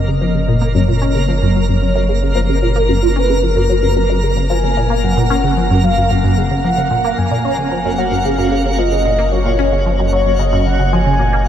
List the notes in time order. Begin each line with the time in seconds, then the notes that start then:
Already playing: F#1 A#3 A#4 D#5
0.08 C#3
0.21 F3
0.35 C#3
0.48 A#2
0.62 A#3
0.74 F#2 C#5
0.88 A#2
1.02 C#4
1.15 C#3
1.28 F3
1.42 F#2
1.55 F#3
1.69 F#2
1.82 F#2 C#5
1.95 F#2
2.09 C#3
2.22 C#3
2.35 F3
2.49 C#3
2.62 A#2
2.76 A#3
2.89 F#2
3.03 A#2
3.16 C#4 B4
3.29 C#3
3.43 F3 A#4
3.56 F#2
3.70 F#3
3.83 F#2
3.96 F#2 A#5
4.10 F#2
4.23 C#3
4.37 C#3
4.50 F3 G#5
4.63 C#3
4.77 A#2
4.90 A#3
5.03 F#2 F#5
5.17 A#2
5.30 C#4
5.44 C#3
5.57 F3
5.70 F#2
5.84 F#3 F5
5.97 F#2
6.11 F#2 F#5
6.24 F#2
6.38 C#3
6.51 C#3
6.64 F3 F#5
6.78 C#3
6.91 A#2
7.04 A#3
7.18 F#1 F#2 F#4 G#5
7.31 A#2
7.45 C#4
7.58 C#3
7.72 F3
7.85 F#2
7.98 F#3 F#5
8.12 F#2
8.25 C#3 F5
8.38 F#2
8.52 C#3
8.65 C#3
8.79 F3 D#5
8.92 C#3
9.05 A#2
9.19 A#3
9.32 F#2 C#5
9.46 A#2
9.59 C#4
9.72 C#3
9.86 F3
9.99 F#2
10.12 F#3 C#5
10.26 F#2
10.39 C#3 D#5
10.53 F#2
10.66 C#3 F#5
10.79 C#3
10.93 F3 G#5
11.06 C#3
11.19 A#2
11.33 A#3